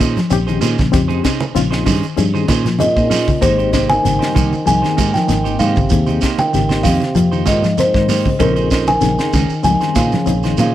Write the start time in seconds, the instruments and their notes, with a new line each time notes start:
Already playing: clean electric guitar D#3
0.00 fingered electric bass A#2, clean electric guitar C#4 D#4 G#4 C5, kick, closed hi-hat, shekere
0.16 clean electric guitar F3, snare, closed hi-hat, low conga, shekere
0.30 fingered electric bass A#1, reed electric piano C4 C#4 D#4 G4, closed hi-hat, high conga, shekere
0.47 clean electric guitar D#3 D#4 G#4 C5, closed hi-hat, shekere
0.61 fingered electric bass A#2, clean electric guitar C#4 D#4 G#4 C5, closed hi-hat, low conga, shekere
0.78 fingered electric bass A#1, clean electric guitar C#3, kick, snare, high conga, shekere
0.92 fingered electric bass F2, clean electric guitar C#3, reed electric piano C4 C#4 D#4 G4, kick, snare, closed hi-hat, shekere
1.08 clean electric guitar D#4 G#4 C5, closed hi-hat, high conga, shekere
1.24 clean electric guitar C3 C#4 D#4 G#4 C5, kick, snare, closed hi-hat, shekere
1.40 closed hi-hat, high conga, shekere
1.55 fingered electric bass A#1, clean electric guitar C#3, reed electric piano C4 C#4 D#4 F4, snare, closed hi-hat, shekere
1.71 clean electric guitar D#4 G#4 C5, snare, shekere
1.86 fingered electric bass G2, clean electric guitar D#3 C#4 D#4 G#4 C5, kick, open hi-hat, high conga, low conga, shekere
2.03 closed hi-hat, shekere
2.16 fingered electric bass G2, clean electric guitar F3, reed electric piano C4 C#4 D#4 G#4, closed hi-hat, shekere
2.34 clean electric guitar D#3 D#4 G#4 C5, shekere
2.48 fingered electric bass A#2, clean electric guitar C#4 D#4 G#4 C5, kick, snare, closed hi-hat, high conga, shekere
2.65 clean electric guitar F3, snare, closed hi-hat, low conga, shekere
2.79 trombone A#2, reed electric piano C4 C#4 D#4 G#4, kalimba D#5, closed hi-hat, high conga, shekere
2.96 fingered electric bass A#2, clean electric guitar D#4 G#4 C5, kick, shekere
3.10 clean electric guitar C#4 D#4 G#4 C5, snare, open hi-hat, low conga, shekere
3.28 clean electric guitar C#3, kick, high conga, shekere
3.41 fingered electric bass G#1, trombone G#2, clean electric guitar D#3 A#3 D#4 C5, reed electric piano A#3 C4 G4, kalimba C5, muted clean electric guitar stroke, kick, closed hi-hat, shekere
3.58 clean electric guitar D#4 G4 C5, closed hi-hat, shekere
3.72 clean electric guitar C3 A#3 D#4 G4 C5, kick, snare, closed hi-hat, shekere
3.89 trombone D#3, kalimba G#5, closed hi-hat, high conga, shekere
4.03 fingered electric bass G#1, clean electric guitar C#3, reed electric piano G3 A#3 C4, snare, closed hi-hat, shekere
4.19 clean electric guitar D#4 G4 C5, snare, closed hi-hat, shekere
4.34 fingered electric bass C2, clean electric guitar D#3 A#3 D#4 G4 C5, kick, closed hi-hat, high conga, low conga, shekere
4.52 muted fingered electric bass stroke, high conga, shekere
4.66 fingered electric bass C2, trombone D#3, clean electric guitar F3, reed electric piano A#3 C4 G#4, kalimba G#5, closed hi-hat, shekere
4.82 clean electric guitar D#3 D#4 G4 C5, snare, closed hi-hat, shekere
4.97 fingered electric bass G#2, clean electric guitar A#3 D#4 G4 C5, kick, closed hi-hat, high conga, shekere
5.14 trombone D#3, clean electric guitar F3, kalimba G5, snare, closed hi-hat, low conga, shekere
5.28 fingered electric bass G#1, reed electric piano A#3 C4 D#4, snare, closed hi-hat, high conga, shekere
5.44 clean electric guitar D#3 D#4 G4 C5, closed hi-hat, shekere
5.59 fingered electric bass G#2, trombone C3, clean electric guitar A#3 D#4 G4 C5, kalimba F5, closed hi-hat, low conga, shekere
5.76 fingered electric bass G#1, clean electric guitar C#3, kick, high conga, shekere
5.89 fingered electric bass D#2, clean electric guitar D#3, reed electric piano A#3 C4 G#4, kick, closed hi-hat, shekere
6.06 clean electric guitar D#4 G4 C5, closed hi-hat, high conga, shekere
6.21 clean electric guitar A#3 D#4 G4 C5, muted clean electric guitar stroke, kick, snare, closed hi-hat, shekere
6.38 trombone D#3, kalimba G5, closed hi-hat, high conga, shekere
6.53 fingered electric bass G#1, clean electric guitar C#3, reed electric piano A#3 C4 G4, snare, closed hi-hat, shekere
6.69 clean electric guitar D#4 G4 C5, snare, high conga, shekere
6.83 fingered electric bass F2, trombone C3, clean electric guitar D#3 A#3 D#4 G4 C5, kalimba F5, kick, open hi-hat, high conga, low conga, shekere
7.00 snare, closed hi-hat, high conga, shekere
7.15 fingered electric bass F2, clean electric guitar F3, reed electric piano A#3 C4 F4, closed hi-hat, shekere
7.32 clean electric guitar D#3 D#4 G4 C5, shekere
7.46 fingered electric bass G#2, trombone A#2, clean electric guitar A#3 D#4 G4 C5, kalimba D#5, kick, snare, closed hi-hat, high conga, shekere
7.62 clean electric guitar F3, snare, closed hi-hat, low conga, shekere
7.77 trombone G#2, reed electric piano A#3 C4 A#4, kalimba C5, snare, closed hi-hat, high conga, shekere
7.94 fingered electric bass G#2, clean electric guitar D#3 D#4 C5, muted clean electric guitar stroke, kick, snare, shekere
8.08 clean electric guitar A#3 D#4 G4 C5, snare, open hi-hat, low conga, shekere
8.26 clean electric guitar C#3, kick, high conga, shekere
8.39 fingered electric bass A#1, trombone F2, clean electric guitar C#3 C#4 D#4 C5, reed electric piano C4 C#4 D#4 G#4, kalimba A#4, muted clean electric guitar stroke, kick, closed hi-hat, shekere
8.56 clean electric guitar D#4 G#4 C5, closed hi-hat, shekere
8.71 clean electric guitar C#4 D#4 G#4 C5, kick, snare, closed hi-hat, shekere
8.87 trombone D#3, kalimba G#5, closed hi-hat, high conga, shekere
9.00 fingered electric bass A#1, clean electric guitar C#3, reed electric piano C4 C#4 D#4 G#4, snare, closed hi-hat, shekere
9.18 clean electric guitar D#4 G#4 C5, snare, closed hi-hat, shekere
9.33 fingered electric bass C#2, clean electric guitar D#3 C#4 D#4 G#4, muted clean electric guitar stroke, kick, snare, closed hi-hat, high conga, low conga, shekere
9.49 muted fingered electric bass stroke, shekere
9.63 fingered electric bass C#2, trombone D#3, clean electric guitar F3, reed electric piano G3 C4 C#4 D#4, kalimba G#5, closed hi-hat, shekere
9.81 clean electric guitar D#3 D#4 G#4 C5, muted fingered electric bass stroke, snare, closed hi-hat, shekere
9.95 fingered electric bass A#2, trombone C#3, clean electric guitar D#4 G#4 C5, kalimba F5, kick, snare, closed hi-hat, high conga, shekere
10.12 clean electric guitar F3, snare, closed hi-hat, low conga, shekere
10.26 fingered electric bass A#1, reed electric piano C4 C#4 D#4 G#4, closed hi-hat, high conga, shekere
10.43 clean electric guitar D#3 D#4 G#4 C5, snare, closed hi-hat, shekere
10.57 fingered electric bass A#2, trombone C#3, clean electric guitar C#4 D#4 G#4 C5, kalimba F5, closed hi-hat, low conga, shekere